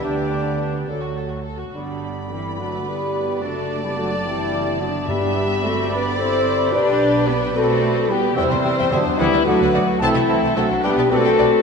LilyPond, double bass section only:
\new Staff \with { instrumentName = "Double bass section" } { \clef bass \time 6/8 \key g \major \tempo 4. = 72 d,4~ d,16 r16 d,4~ d,16 r16 | g,,2. | fis,,2. | g,,2. |
b,,2. | e,16 e,16 e,16 e,16 e,16 e,16 d,16 d,16 d,16 d,16 d,16 r16 | c,16 c,16 c,16 c,16 c,16 c,16 b,,16 b,,16 b,,16 b,,16 b,,16 r16 | }